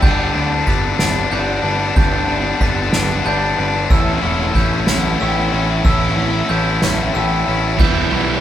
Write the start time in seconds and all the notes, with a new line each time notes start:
Already playing: G3 G4
0.02 G1 G2 D3 G3 B3 D4 G6, kick, crash
0.34 D2 G3 B3 D4, ride
0.66 G1 D3 G3 B3 D4 B6, kick, ride
0.98 G1 G3 B3 D4 B4, snare, ride
1.30 G1 D3 G3 B3 D4 D5 G6, ride
1.62 G1 G3 B3 D4 B4, ride
1.96 G1 G2 D3 G3 B3 D4 G6, kick, ride
2.27 G3 B3 D4, ride
2.59 G1 D3 G3 B3 D4 B6, kick, ride
2.92 G1 G3 B3 D4 B4, snare, ride
3.24 G1 D3 G3 B3 D4 D5 G6, ride
3.57 G1 G3 B3 D4 B4, ride
3.90 A1 A2 E3 A3 C#4 E4 E6, kick, ride
4.21 E1 E3 A3 C#4 E4, ride
4.54 A1 E3 A3 C#4 E4 G6, kick, ride
4.87 A1 A3 C#4 E4, snare, ride
5.19 A1 E3 A3 C#4 E4 G4 E6, ride
5.52 A1 A3 C#4 E4, ride
5.84 A1 A2 E3 A3 C#4 E4 E6, kick, ride
6.16 E3 A3 C#4 E4, ride
6.49 A1 E3 A3 C#4 E4 G6, ride
6.82 A1 A3 C#4 E4, snare, ride
7.13 A1 E3 A3 C#4 E4 G4 E6, ride
7.46 A1 A3 C#4 E4, ride
7.78 E1 E3 G3 B3 E4 G6, kick, crash
8.11 B1 G3 B3 E4, ride